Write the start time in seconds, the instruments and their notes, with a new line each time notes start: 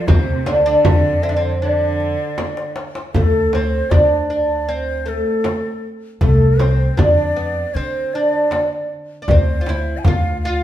0.07 upright bass D2, cello C3, oud C4, ney C5, darbuka dum, frame drum
0.46 cello D3, oud D4, darbuka tek, frame drum
0.65 cello D3, oud D4, ney D5, darbuka ka
0.85 upright bass F2, frame drum, darbuka dum
1.23 oud C4, ney E5, darbuka ka
1.29 oud D4
1.33 oud C4, ney D5
1.42 ney C5
1.52 ney D5
1.59 cello D3, oud D4, ney C#5, darbuka ka
1.73 ney D5
1.81 darbuka ka
2.00 darbuka ka
2.19 darbuka ka
2.38 darbuka tek, frame drum
2.57 darbuka ka
2.76 darbuka tek
2.95 darbuka ka
3.14 upright bass D2, oud A3, ney A4, frame drum, darbuka dum
3.53 oud C4, ney C5, darbuka tek, frame drum
3.90 upright bass D2, oud D4, ney D5, darbuka dum, frame drum
4.11 darbuka ka
4.29 oud D4, ney D5
4.68 oud C4, ney C5, darbuka ka
5.06 oud A3, ney A4
5.26 darbuka ka
5.44 darbuka tek, frame drum
6.21 upright bass C2, oud A3, ney A4, frame drum, darbuka dum
6.59 oud C4, ney C5, darbuka tek, frame drum
6.97 upright bass F2, oud D4, ney D5, darbuka dum, frame drum
7.18 darbuka ka
7.36 oud B3
7.74 upright bass D3, oud C4, ney C5, darbuka ka
8.14 oud D4, ney D5
8.33 darbuka ka
8.51 darbuka tek, frame drum
9.22 oud D4
9.28 upright bass D2, oud C4, ney C5, darbuka dum, frame drum
9.61 oud F4
9.66 oud E4, darbuka tek, frame drum
9.98 ney G#5
10.04 upright bass D2, oud F4, ney F5, darbuka dum, frame drum
10.24 darbuka ka
10.41 oud F4, ney F5